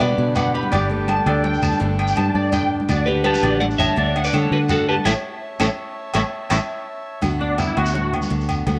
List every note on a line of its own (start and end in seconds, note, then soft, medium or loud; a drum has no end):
0.00 0.16 B2 medium
0.00 1.07 D3 medium
0.00 0.71 B3 medium
0.00 0.73 D4 medium
0.00 2.85 D4 medium
0.00 0.71 F#4 medium
0.00 0.34 B4 medium
0.00 0.33 D5 loud
0.00 0.71 F#5 medium
0.00 0.70 B5 medium
0.00 shekere soft
0.09 high conga medium
0.18 0.65 B2 medium
0.18 0.36 C#3 medium
0.36 0.54 B2 medium
0.36 0.53 B4 medium
0.36 0.53 D5 medium
0.36 0.53 F#5 medium
0.36 muted conga medium
0.36 low agogo medium
0.36 shekere loud
0.44 low conga medium
0.54 0.73 A2 medium
0.54 0.71 G4 medium
0.54 0.71 B4 medium
0.54 0.71 B5 medium
0.63 high conga medium
0.72 1.20 G1 medium
0.72 1.43 G2 medium
0.72 0.90 A3 medium
0.72 1.27 D4 medium
0.72 1.06 G4 medium
0.72 1.81 G4 medium
0.72 1.06 B4 medium
0.72 0.88 D5 medium
0.72 2.87 G5 medium
0.72 2.87 A5 medium
0.72 muted conga medium
0.72 low agogo medium
0.72 shekere medium
0.90 1.80 A3 medium
0.90 low conga medium
0.99 low conga soft
1.08 2.15 D3 medium
1.08 1.25 A5 medium
1.08 muted conga medium
1.08 low agogo medium
1.17 high conga medium
1.26 1.58 D2 loud
1.26 2.67 D4 medium
1.26 1.81 D4 medium
1.26 2.67 A4 medium
1.26 1.43 D5 medium
1.26 low conga medium
1.26 low agogo medium
1.44 1.78 G2 medium
1.44 1.61 G5 medium
1.44 muted conga medium
1.54 shekere soft
1.62 1.70 D2 medium
1.62 1.79 A5 medium
1.62 low agogo medium
1.62 shekere loud
1.71 high conga medium
1.71 low conga medium
1.71 shekere soft
1.80 2.12 G1 loud
1.80 2.51 G2 medium
1.80 1.98 A3 medium
1.80 2.34 D4 medium
1.80 2.88 G4 medium
1.80 muted conga medium
1.80 low conga soft
1.99 3.24 A3 medium
1.99 2.15 G5 medium
1.99 low agogo medium
2.07 shekere medium
2.16 2.33 G2 medium
2.16 2.88 D3 medium
2.16 2.33 A5 medium
2.16 muted conga medium
2.16 low conga medium
2.16 low agogo medium
2.16 shekere soft
2.26 high conga medium
2.35 2.82 G2 medium
2.35 2.87 D4 medium
2.35 2.51 D5 medium
2.52 2.87 G2 medium
2.52 2.70 G5 medium
2.52 muted conga medium
2.52 low agogo medium
2.52 shekere loud
2.62 low conga medium
2.80 high conga medium
2.89 3.36 D2 medium
2.89 3.95 D3 medium
2.89 3.07 D4 medium
2.89 5.04 D4 medium
2.89 3.42 F#4 medium
2.89 3.06 D5 medium
2.89 5.04 F#5 medium
2.89 7.19 A5 medium
2.89 muted conga medium
2.89 low agogo medium
2.89 shekere medium
3.06 3.96 D4 medium
3.06 3.23 G4 medium
3.06 3.23 B4 medium
3.06 low conga medium
3.16 low conga soft
3.24 4.33 A3 medium
3.24 3.59 G4 medium
3.24 3.60 B4 loud
3.24 3.42 A5 medium
3.24 muted conga loud
3.24 low agogo medium
3.34 high conga medium
3.34 low conga soft
3.34 shekere medium
3.43 3.75 A1 loud
3.43 3.96 F#4 medium
3.43 3.60 D5 medium
3.43 low conga medium
3.43 low agogo medium
3.60 3.97 A2 medium
3.60 3.65 D5 medium
3.60 3.65 F#5 medium
3.60 muted conga loud
3.71 shekere soft
3.78 3.87 A1 medium
3.78 4.21 C#5 medium
3.78 4.24 E5 loud
3.78 3.96 A5 medium
3.78 low agogo medium
3.78 shekere loud
3.89 high conga medium
3.89 low conga medium
3.96 4.29 D2 loud
3.96 5.05 D3 medium
3.96 4.15 D4 medium
3.96 4.51 F#4 medium
3.96 4.14 D5 medium
3.96 muted conga medium
3.96 low conga soft
4.16 5.04 D4 medium
4.16 4.33 F#5 medium
4.16 low agogo medium
4.24 4.33 B4 medium
4.24 4.34 D5 medium
4.24 shekere medium
4.33 4.49 D3 medium
4.33 5.06 A3 medium
4.33 4.51 A4 medium
4.33 4.52 C#5 medium
4.33 muted conga medium
4.33 low conga medium
4.33 low agogo medium
4.33 shekere soft
4.42 high conga medium
4.51 4.99 D3 medium
4.51 5.04 F#4 medium
4.51 4.57 F#4 medium
4.51 4.58 B4 medium
4.69 4.87 F#4 medium
4.69 4.88 A4 medium
4.69 4.86 F#5 medium
4.69 muted conga medium
4.69 low agogo medium
4.69 shekere loud
4.79 low conga medium
4.89 4.94 G4 medium
4.89 4.94 B4 medium
4.89 5.04 A5 medium
4.97 high conga medium
5.05 5.12 A1 medium
5.05 5.12 E3 medium
5.05 5.12 A3 medium
5.05 5.12 C#4 medium
5.05 5.11 E4 medium
5.05 5.11 A4 medium
5.05 5.12 C#5 medium
5.05 7.21 C#5 medium
5.05 5.12 E5 medium
5.05 7.21 E5 medium
5.05 5.12 A5 medium
5.05 muted conga loud
5.05 low agogo loud
5.05 shekere medium
5.60 5.67 A1 medium
5.60 5.66 E3 medium
5.60 5.66 A3 medium
5.60 5.66 C#4 medium
5.60 5.67 E4 medium
5.60 5.66 A4 medium
5.60 5.66 C#5 medium
5.60 5.66 E5 medium
5.60 5.66 A5 medium
5.60 muted conga medium
5.60 low agogo loud
5.60 shekere medium
6.14 6.21 A1 loud
6.14 6.20 E3 medium
6.14 6.20 A3 loud
6.14 6.20 C#4 medium
6.14 6.21 E4 medium
6.14 6.21 A4 medium
6.14 6.21 C#5 medium
6.14 6.21 E5 medium
6.14 6.20 A5 medium
6.14 muted conga medium
6.14 low agogo loud
6.14 shekere medium
6.50 6.58 A1 loud
6.50 6.56 E3 medium
6.50 6.56 A3 medium
6.50 6.56 C#4 medium
6.50 6.56 E4 loud
6.50 6.57 A4 loud
6.50 6.56 C#5 medium
6.50 6.57 C#5 medium
6.50 6.57 E5 medium
6.50 6.57 A5 medium
6.50 muted conga medium
6.50 low agogo loud
6.50 shekere medium
7.22 7.70 D2 medium
7.22 8.30 D3 medium
7.22 7.57 A3 medium
7.22 7.40 B3 soft
7.22 8.67 F#4 medium
7.22 muted conga medium
7.22 low agogo medium
7.22 shekere medium
7.41 7.59 B3 medium
7.41 7.59 D4 medium
7.58 8.66 A3 medium
7.58 7.77 B3 medium
7.58 7.77 E4 medium
7.58 muted conga medium
7.58 low conga medium
7.58 low agogo medium
7.58 shekere medium
7.68 high conga medium
7.77 8.25 D2 loud
7.77 8.49 B3 medium
7.77 7.93 F#4 medium
7.77 low agogo medium
7.86 shekere medium
7.95 8.31 A2 medium
7.95 8.13 F#4 medium
7.95 muted conga medium
8.13 low conga medium
8.13 low agogo medium
8.22 high conga medium
8.22 low conga soft
8.22 shekere medium
8.30 8.63 D2 loud
8.30 8.79 D3 medium
8.30 muted conga medium
8.30 shekere soft
8.41 shekere soft
8.49 8.79 B3 medium
8.49 low agogo medium
8.49 shekere medium
8.67 8.79 D2 loud
8.67 8.79 A3 medium
8.67 8.79 F#4 medium
8.67 muted conga medium
8.67 low conga medium
8.67 low agogo medium
8.67 shekere soft